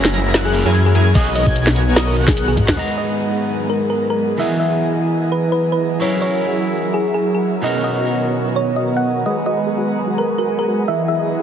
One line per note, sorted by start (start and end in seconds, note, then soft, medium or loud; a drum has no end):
0.00 0.32 F#1 loud
0.00 1.13 E3 medium
0.00 0.32 F#3 medium
0.00 1.13 A#3 medium
0.00 0.51 C#4 loud
0.00 0.32 E4 medium
0.00 0.52 E4 medium
0.00 1.13 F#4 medium
0.00 0.32 G#4 medium
0.00 0.52 G#4 medium
0.00 0.32 A#4 medium
0.00 0.53 A#4 loud
0.00 0.32 A#5 medium
0.00 0.32 A#6 loud
0.05 snare medium
0.14 closed hi-hat medium
0.34 0.63 F#1 medium
0.34 0.53 F#3 medium
0.34 0.53 E4 medium
0.34 0.53 G#4 medium
0.34 0.53 A#4 medium
0.34 0.53 F#5 medium
0.34 0.53 F#6 loud
0.34 snare loud
0.34 closed hi-hat medium
0.34 crash soft
0.45 0.58 G#4 medium
0.52 1.12 C#4 medium
0.52 1.13 E4 medium
0.52 1.13 G#4 medium
0.52 1.14 A#4 medium
0.52 closed hi-hat medium
0.65 0.93 F#2 loud
0.65 0.76 F#3 loud
0.65 0.76 E4 medium
0.65 0.78 G#4 medium
0.65 0.76 G#4 medium
0.65 0.76 A#4 medium
0.65 0.76 G#5 loud
0.65 0.76 G#6 loud
0.75 closed hi-hat medium
0.86 1.06 G#4 loud
0.95 1.13 F#2 loud
0.95 1.07 F#3 loud
0.95 1.07 E4 medium
0.95 1.07 G#4 medium
0.95 1.07 A#4 medium
0.95 1.07 G#5 loud
0.95 1.07 G#6 loud
0.95 closed hi-hat medium
1.14 1.44 B1 medium
1.14 2.76 D#3 medium
1.14 2.76 B3 medium
1.14 1.44 B3 medium
1.14 1.28 C#4 loud
1.14 1.28 D#4 medium
1.14 1.44 F#4 medium
1.14 1.28 F#4 medium
1.14 1.29 G#4 loud
1.14 2.76 A#4 medium
1.14 1.44 A#4 medium
1.14 1.44 C#5 medium
1.14 1.29 D#5 loud
1.14 1.44 D#5 loud
1.14 1.44 D#6 medium
1.14 kick loud
1.14 closed hi-hat medium
1.14 crash soft
1.35 1.63 D#5 medium
1.35 closed hi-hat medium
1.47 1.94 B1 loud
1.47 1.94 B3 medium
1.47 1.94 F#4 medium
1.47 1.94 A#4 medium
1.47 1.94 C#5 medium
1.47 1.94 G#5 medium
1.47 1.94 G#6 loud
1.47 kick medium
1.56 closed hi-hat medium
1.67 snare medium
1.76 closed hi-hat medium
1.96 2.15 B1 loud
1.96 2.15 B3 medium
1.96 2.15 F#4 medium
1.96 2.15 A#4 medium
1.96 2.15 C#5 medium
1.96 2.15 D#5 medium
1.96 2.15 D#6 loud
1.96 snare loud
1.96 closed hi-hat medium
1.96 crash soft
2.07 2.20 A#4 medium
2.16 2.76 B1 loud
2.16 2.75 B3 medium
2.16 2.75 F#4 medium
2.16 2.75 A#4 medium
2.16 2.75 C#5 medium
2.16 2.75 F#5 medium
2.16 2.75 F#6 medium
2.16 closed hi-hat medium
2.28 2.41 G#4 medium
2.28 kick loud
2.28 snare medium
2.37 closed hi-hat medium
2.48 2.68 G#4 loud
2.48 high tom medium
2.57 kick medium
2.57 closed hi-hat medium
2.57 mid tom medium
2.68 snare medium
2.68 mid tom medium
2.75 4.36 G#2 medium
2.75 4.38 F#3 medium
2.75 4.37 G#3 medium
2.75 4.37 B3 medium
2.75 4.38 B3 medium
2.75 4.37 D#4 medium
2.75 4.38 F#4 medium
2.75 4.37 G#4 medium
2.75 5.98 G#4 medium
2.75 4.37 B4 medium
2.75 2.91 D#5 medium
2.75 4.37 F#5 medium
2.75 4.37 A#5 medium
2.79 4.38 A#5 medium
2.97 3.25 D#5 medium
3.70 3.82 A#4 medium
3.90 4.03 A#4 medium
4.10 4.30 A#4 loud
4.37 5.98 E3 medium
4.37 6.00 E3 medium
4.37 5.99 B3 medium
4.37 6.00 E4 medium
4.37 6.00 F#4 medium
4.37 6.00 G#4 medium
4.37 5.99 D#5 medium
4.37 6.00 D#5 medium
4.37 5.99 D#5 medium
4.37 4.54 E5 medium
4.37 5.99 F#5 medium
4.41 6.00 G#4 medium
4.60 4.88 E5 medium
5.32 5.45 B4 medium
5.52 5.65 B4 medium
5.72 5.93 B4 medium
6.00 7.61 F#3 medium
6.00 7.62 F#3 medium
6.00 7.61 C#4 medium
6.00 7.62 E4 medium
6.00 7.62 G#4 medium
6.00 7.62 A#4 medium
6.00 9.23 A#4 medium
6.00 7.63 A#4 medium
6.00 6.16 C#5 medium
6.00 7.62 F#5 medium
6.22 6.50 C#5 medium
6.94 7.07 G#4 medium
7.14 7.27 G#4 medium
7.35 7.55 G#4 medium
7.62 9.23 B2 medium
7.62 9.24 D#3 medium
7.62 9.24 B3 medium
7.62 10.85 B3 medium
7.62 9.23 C#4 medium
7.62 9.24 D#4 medium
7.62 9.24 F#4 medium
7.62 9.24 A#4 medium
7.62 9.24 C#5 medium
7.62 7.78 D#5 medium
7.62 9.24 D#5 medium
7.66 9.25 A#4 medium
7.84 8.12 D#5 medium
8.56 8.69 C#5 medium
8.76 8.89 D#5 medium
8.97 9.17 F#5 medium
9.26 10.87 F#3 medium
9.26 10.86 G#3 medium
9.26 10.86 G#4 medium
9.26 11.42 G#4 medium
9.26 9.33 B4 medium
9.26 10.86 B4 medium
9.26 9.40 D#5 medium
9.26 10.86 F#5 medium
9.26 10.86 A#5 medium
9.37 9.41 G#4 medium
9.46 9.51 F#4 medium
9.46 9.74 D#5 medium
9.57 9.61 B4 medium
9.67 9.71 G#4 medium
9.78 9.84 F#4 medium
9.87 9.92 B4 medium
9.98 10.02 G#4 medium
10.07 10.14 F#4 medium
10.18 10.31 A#4 medium
10.18 10.24 B4 loud
10.27 10.30 G#4 medium
10.38 10.42 F#4 loud
10.38 10.51 A#4 medium
10.48 10.52 B4 medium
10.59 10.65 G#4 loud
10.59 10.79 A#4 medium
10.68 10.73 F#4 medium
10.79 10.83 B4 medium
10.88 11.42 E3 medium
10.88 11.42 E4 medium
10.88 11.42 G#4 medium
10.88 11.42 D#5 medium
10.88 10.95 D#5 medium
10.88 11.42 D#5 medium
10.88 11.02 E5 medium
10.88 11.42 F#5 medium
10.99 11.03 B4 medium
11.08 11.13 G#4 medium
11.08 11.36 E5 medium
11.20 11.24 D#5 loud
11.29 11.34 B4 medium